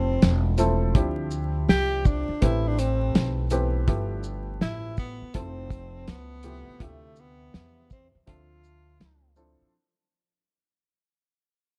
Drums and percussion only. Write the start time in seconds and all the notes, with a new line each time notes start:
0.22 snare, closed hi-hat
0.58 closed hi-hat, shaker
0.95 kick, closed hi-hat
1.31 shaker
1.69 snare, closed hi-hat
2.05 kick, shaker
2.42 kick, closed hi-hat
2.79 closed hi-hat, shaker
3.15 snare, closed hi-hat
3.50 closed hi-hat, shaker
3.88 kick, closed hi-hat
4.23 shaker
4.61 snare, closed hi-hat
4.98 kick, shaker
5.34 kick, closed hi-hat
5.70 kick, closed hi-hat, shaker
6.08 snare, closed hi-hat
6.43 closed hi-hat, shaker
6.80 kick, closed hi-hat
7.16 shaker
7.54 snare, closed hi-hat
7.90 kick, shaker
8.27 kick, closed hi-hat
8.64 shaker
9.01 snare, closed hi-hat
9.36 shaker